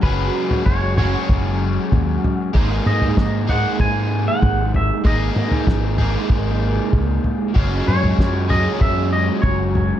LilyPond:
<<
  \new Staff \with { instrumentName = "Clean electric guitar" } { \time 4/4 \key gis \minor \tempo 4 = 96 b'4 cis''8 cis''2 r8 | r8 dis''4 fis''8 gis''8. fis''8. e''8 | dis''4 r2. | r8 cis''4 dis''8 e''8 dis''8 cis''4 | }
  \new Staff \with { instrumentName = "Overdriven electric guitar" } { \time 4/4 \key gis \minor <fis cis' fis' gis'>4. <fis cis' fis' gis'>2~ <fis cis' fis' gis'>8 | <gis ais dis' gis'>4. <gis ais dis' gis'>2~ <gis ais dis' gis'>8 | <gis ais dis' gis'>4. <gis ais dis' gis'>2~ <gis ais dis' gis'>8 | <fis gis cis' gis'>4. <fis gis cis' gis'>2~ <fis gis cis' gis'>8 | }
  \new Staff \with { instrumentName = "Overdriven electric guitar" } { \time 4/4 \key gis \minor <fis gis cis' gis'>4. <fis gis cis' gis'>2~ <fis gis cis' gis'>8 | <gis ais dis' gis'>4. <gis ais dis' gis'>2~ <gis ais dis' gis'>8 | <gis ais dis' gis'>4. <gis ais dis' gis'>2~ <gis ais dis' gis'>8 | <fis gis cis' gis'>4. <fis gis cis' gis'>2~ <fis gis cis' gis'>8 | }
  \new Staff \with { instrumentName = "Picked electric bass" } { \clef bass \time 4/4 \key gis \minor fis,,8 r8 fis,,4 fis,,4 dis,8 r8 | gis,,8 gis,8 gis,4 gis,4 gis,,4 | gis,,8 r8 gis,,4 gis,,4 cis,8 r8 | fis,,8 fis,8 fis,4 fis,4 fis,,4 | }
  \new DrumStaff \with { instrumentName = "Drums" } \drummode { \time 4/4 <bd tomfh>8. tomfh16 bd8 <tomfh toml>8 <bd tomfh>4 <bd tomfh toml>8 tomfh8 | <bd tomfh>8 toml16 tomfh16 <bd sn>8 tomfh8 <bd tomfh>4 <bd tomfh toml>8 tomfh8 | <bd tomfh>8 toml16 tomfh16 <bd sn>8 tomfh8 <bd tomfh>4 <bd tomfh toml>8 tomfh8 | <bd tomfh>8 toml16 tomfh16 <bd sn>8 tomfh8 <bd tomfh>4 <bd tomfh toml>8 tomfh8 | }
>>